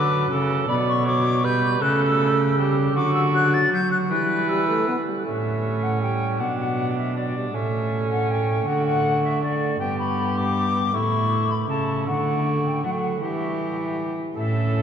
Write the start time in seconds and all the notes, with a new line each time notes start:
Already playing: D3 F#3 B4 D6
0.30 C#3 A4
0.68 B2 F#3 D5 B5
0.88 C#6
1.05 F#3 C#5 D6
1.44 G3 B4 G6
1.81 C#3 A3 A4 F#6
2.01 E6
2.58 G3 G4
2.95 D3 F#3 F#4 D6
3.14 E6
3.33 F#3 F#6
3.53 A6
3.72 F#3 G6
3.91 F#6
4.10 E3 G3 B4 F#6
4.48 G3 E6
4.68 A3
4.88 B3
5.07 G3
5.26 A2 A3 C#4 E5
5.83 F#5
6.01 G3 G5
6.39 B2 F#3 D4 F#5
6.59 F#5
6.97 E5
7.15 F#3 D4 D5
7.36 G3
7.53 A2 A3 C#4 E5
8.11 F#5
8.30 G5
8.67 D3 A3 F#4 F#5
8.86 F#5
9.24 E5
9.42 A3 F#4 D5
9.79 G2 B3 G4 G5
9.99 B5
10.37 D6
10.94 A2 A3 E4 C#6
11.51 B5
11.69 C#3 A3 E4 A5
12.07 D3 A3 F#4 F#5
12.65 G5
12.83 F#3 A3 F#4 F#5
12.91 G5
12.98 F#5
13.21 E3 G3 G4 E5
14.36 A2 C#4 A4 E5